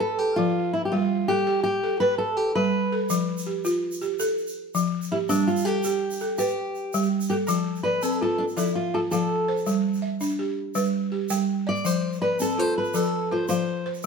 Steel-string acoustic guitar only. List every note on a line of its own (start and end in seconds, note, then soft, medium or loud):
0.00 0.19 A4 medium
0.19 0.38 G4 medium
0.36 0.71 F4 medium
0.73 0.84 E4 medium
0.85 0.92 G4 medium
0.92 1.29 F4 medium
1.28 1.62 G4 medium
1.63 2.00 G4 medium
2.00 2.18 B4 loud
2.18 2.37 A4 medium
2.37 2.55 G4 medium
2.55 2.94 B4 medium
5.12 5.17 E4 medium
5.29 5.48 D4 medium
5.47 5.65 F4 medium
5.65 6.37 G4 loud
6.38 7.07 G4 medium
7.30 7.35 G4 medium
7.47 7.83 A4 medium
7.83 8.02 B4 medium
8.02 8.21 A4 medium
8.22 8.40 A4 medium
8.38 8.43 D4 medium
8.56 8.75 E4 medium
8.75 8.94 F4 medium
8.94 8.99 A4 medium
9.11 9.50 A4 medium
11.69 11.86 D5 medium
11.86 12.21 C5 medium
12.22 12.40 B4 medium
12.42 12.59 A4 medium
12.59 12.77 C5 medium
12.78 12.95 B4 medium
12.95 13.31 A4 medium
13.32 13.48 C5 medium
13.49 13.87 C5 medium